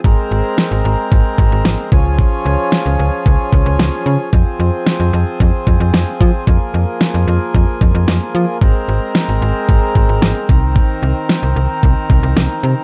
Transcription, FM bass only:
\new Staff \with { instrumentName = "FM bass" } { \clef bass \time 4/4 \key f \minor \tempo 4 = 112 aes,,16 r16 aes,,16 r8 aes,,16 aes,,16 r16 aes,,16 r16 aes,,16 aes,,16 aes,,16 r16 des,8~ | des,16 r16 des,16 r8 des,16 des,16 r16 des,16 r16 des,16 des,16 des,16 r16 des16 r16 | f,16 r16 f,16 r8 f,16 f,16 r16 f,16 r16 f,16 f,16 f,16 r16 f16 r16 | f,16 r16 f,16 r8 f,16 f,16 r16 f,16 r16 f,16 f,16 f,16 r16 f16 r16 |
aes,,16 r16 aes,,16 r8 aes,,16 aes,,16 r16 aes,,16 r16 aes,,16 aes,,16 aes,,16 r16 c,8~ | c,16 r16 c,16 r8 c,16 c,16 r16 c,16 r16 c,16 c,16 c,16 r16 c16 r16 | }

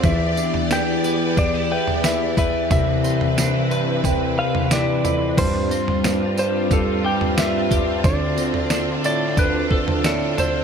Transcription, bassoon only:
\new Staff \with { instrumentName = "Bassoon" } { \clef bass \time 4/4 \key g \mixolydian \tempo 4 = 90 e,8 r8 e,4. e,4. | c,4. g,8 c,4 g,8 f,8 | g,8 r8 g,4. g,4. | d,4. a,8 d,4 a,8 d,8 | }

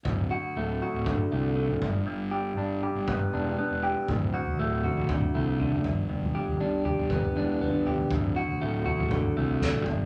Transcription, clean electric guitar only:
\new Staff \with { instrumentName = "Clean electric guitar" } { \time 4/4 \key d \mixolydian \tempo 4 = 119 d,8 fis'8 a8 fis'8 d8 a8 d8 g,8 | g,8 g'8 d'8 g'8 b8 d'8 b8 g'8 | d,8 fis'8 a8 fis'8 d8 a8 d8 g,8 | g,8 g'8 d'8 g'8 b8 d'8 b8 g'8 |
d,8 fis'8 a8 fis'8 d8 a8 d8 g,8 | }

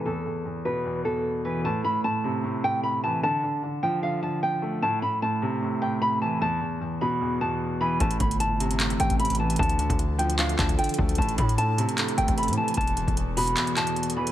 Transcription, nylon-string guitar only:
\new Staff \with { instrumentName = "Nylon-string guitar" } { \time 4/4 \key a \minor \tempo 4 = 151 a'4 r8 b'4 a'4 b'8 | a''8 b''8 a''4 r8 g''8 b''8 a''8 | a''4 r8 g''8 f''8 a''8 g''4 | a''8 b''8 a''4 r8 g''8 b''8 a''8 |
a''4 r8 b''4 a''4 b''8 | a''8 b''8 a''4 r8 g''8 b''8 a''8 | a''4 r8 g''8 f''8 a''8 g''4 | a''8 b''8 a''4 r8 g''8 b''8 a''8 |
a''4 r8 b''4 a''4 b''8 | }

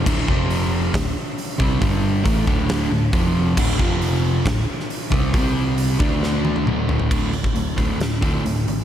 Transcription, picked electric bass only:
\new Staff \with { instrumentName = "Picked electric bass" } { \clef bass \time 4/4 \key d \minor \tempo 4 = 136 d,,8 f,,4. d,,8 r4 c,8 | g,,4 a,,8 d,,4 d,,8 f,,4 | d,,8 f,,4. d,,8 r4 c,8 | c,4. d,4. d,,4 |
d,,4 d,,4 d,,4 d,,8 a,,8 | }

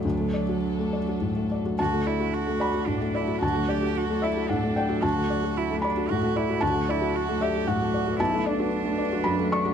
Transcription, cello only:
\new Staff \with { instrumentName = "Cello" } { \time 3/4 \key d \major \tempo 4 = 112 fis2~ fis8 r8 | fis'8 e'8 fis'4 d'8 e'8 | fis'8 g'8 fis'8 e'8 d'4 | fis'4 e'8 d'8 fis'8 e'8 |
fis'8 e'8 fis'8 g'8 fis'4 | e'8 d'2~ d'8 | }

